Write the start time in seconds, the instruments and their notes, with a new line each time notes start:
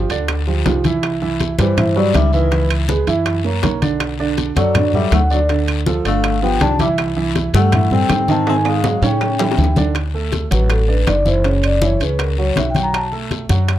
0.10 upright bass D2, grand piano D3 D4 D5, high bongo, high conga, high timbale, short guiro
0.28 high bongo, high conga, high timbale, long guiro, claves
0.47 grand piano F3 F4 G4, high bongo, high conga
0.65 upright bass C2, grand piano F3 F4 G4, high bongo, low bongo, high conga, high timbale, low timbale, short guiro
0.84 grand piano E3 E4 E5, high bongo, high conga, high timbale, short guiro
1.03 high bongo, high conga, high timbale, long guiro, claves
1.22 grand piano E3 E4 E5, high conga
1.40 high bongo, high conga, high timbale, short guiro
1.58 upright bass G2, tenor saxophone E3, grand piano G3 G4 B4, vibraphone C5, high conga, high timbale, short guiro
1.77 grand piano E3 E4 E5, high bongo, high conga, low conga, high timbale, long guiro, claves
1.96 tenor saxophone F#3, grand piano G3 G4 B4, vibraphone D5, high conga
2.14 upright bass C#2, tenor saxophone G3, vibraphone E5, high bongo, low bongo, high conga, high timbale, low timbale, short guiro, claves
2.33 tenor saxophone D#3, grand piano E3 E4 E5, vibraphone B4, short guiro
2.51 grand piano E3 E4 E5, high bongo, high conga, high timbale, long guiro
2.70 high conga, high timbale, claves
2.89 grand piano G#3 G#4 B4, high bongo, high conga, short guiro
3.07 upright bass F#2, grand piano E3 E4 E5, high bongo, high conga, high timbale, short guiro
3.26 high bongo, high conga, high timbale, long guiro, claves
3.44 grand piano A#3 A#4 C#5, high bongo, high conga
3.63 upright bass B1, grand piano A#3 A#4 C#5, high bongo, low bongo, high conga, high timbale, low timbale, short guiro
3.81 grand piano D3 D4 D5, high bongo, high conga, high timbale, short guiro
4.00 high bongo, high conga, high timbale, long guiro, claves
4.19 grand piano D3 D4 D5, high conga
4.37 high bongo, high conga, high timbale, short guiro
4.56 upright bass F#2, grand piano F#3 F#4 A4, tenor saxophone F#3, vibraphone D5, high conga, high timbale, short guiro
4.74 grand piano D3 D4 D5, high bongo, high conga, low conga, high timbale, long guiro, claves
4.93 grand piano F#3 F#4 A4, tenor saxophone G3, vibraphone E5, high conga, low conga
5.11 upright bass D2, tenor saxophone A3, vibraphone F#5, high bongo, low bongo, high conga, high timbale, low timbale, short guiro, claves
5.30 grand piano D3 D4 D5, tenor saxophone F#3, vibraphone D5, short guiro
5.49 grand piano D3 D4 D5, high bongo, high conga, high timbale, long guiro
5.68 high conga, high timbale, claves
5.86 grand piano F3 F4 A4, high bongo, high conga, short guiro
6.05 upright bass G1, grand piano D3 D4 D5, tenor saxophone A3, vibraphone F5, high bongo, high conga, high timbale, short guiro
6.24 high bongo, high conga, high timbale, long guiro, claves
6.42 grand piano F3 F4 G4, tenor saxophone B3, vibraphone G5, high bongo, high conga
6.60 upright bass C2, grand piano F3 F4 G4, tenor saxophone D4, vibraphone A5, high bongo, low bongo, high conga, high timbale, low timbale, short guiro
6.79 grand piano E3 E4 E5, tenor saxophone G3, vibraphone E5, high bongo, high conga, high timbale, short guiro
6.98 high bongo, high conga, high timbale, long guiro, claves
7.16 grand piano E3 E4 E5, high conga
7.35 high bongo, high conga, high timbale, short guiro
7.53 upright bass G2, grand piano G3 G4 A4, tenor saxophone A3, vibraphone F#5, high conga, high timbale, short guiro
7.72 grand piano E3 E4 E5, high bongo, high conga, low conga, high timbale, long guiro, claves
7.91 grand piano G3 G4 A4, tenor saxophone C4, vibraphone G5, high conga, low conga
8.09 upright bass G#2, high bongo, low bongo, high conga, high timbale, low timbale, short guiro, claves
8.28 grand piano D#3 D#4 D#5, tenor saxophone C4, vibraphone A5, high conga, short guiro
8.47 grand piano D#3 D#4 D#5, tenor saxophone C4, vibraphone G#5, high bongo, high conga, high timbale, long guiro
8.65 tenor saxophone G#3, vibraphone F5, high conga, high timbale, claves
8.84 grand piano F#3 F#4 G#4, high bongo, high conga, high timbale, short guiro
9.02 upright bass A2, grand piano C#3 C#4 C#5, tenor saxophone C#4, vibraphone G5, high bongo, high conga, low timbale, short guiro
9.21 high bongo, high conga, low timbale, long guiro, claves
9.39 grand piano E3 E4 G4, high bongo, high conga, low timbale
9.51 high bongo
9.57 upright bass D2, grand piano E3 E4 G4, high conga, low timbale, short guiro
9.64 low bongo
9.76 grand piano D3 D4 D5, low bongo, high conga, low timbale, short guiro
9.95 high bongo, high conga, high timbale, long guiro, claves
10.14 grand piano A3 A4, high conga
10.32 high bongo, high conga, high timbale, short guiro
10.51 upright bass A1, grand piano F#3 F#4, vibraphone B4, high conga, high timbale, short guiro
10.70 vibraphone A4, high bongo, high conga, high timbale, long guiro, claves
10.88 grand piano D4 D5, vibraphone B4, high conga
11.07 upright bass F#1, vibraphone D5, high bongo, low bongo, high conga, high timbale, low timbale, short guiro, claves
11.25 grand piano E3 E4, vibraphone C5, high conga, short guiro
11.44 grand piano C#3 C#4, vibraphone C#5, high bongo, high conga, high timbale, long guiro
11.63 vibraphone D5, high conga, high timbale, claves
11.82 grand piano E3 E4, vibraphone C#5, high bongo, high conga, short guiro
12.00 upright bass C#2, grand piano C#3 C#4, vibraphone B4, high bongo, high conga, high timbale, short guiro
12.19 vibraphone A#4, high bongo, high conga, high timbale, long guiro, claves
12.38 grand piano F#3 F#4, vibraphone C#5, high bongo, high conga
12.56 upright bass B1, vibraphone E5, high bongo, low bongo, high conga, high timbale, low timbale, short guiro
12.70 vibraphone G5
12.75 grand piano F#3 F#4, high bongo, high conga, high timbale, short guiro
12.83 vibraphone A#5
12.93 vibraphone A5, high bongo, high conga, high timbale, long guiro, claves
13.12 grand piano A3 A4, high conga
13.31 high bongo, high conga, high timbale, short guiro
13.49 upright bass F#2, grand piano F#3 F#4, high conga, high timbale, short guiro
13.68 high bongo, high conga, high timbale, long guiro, claves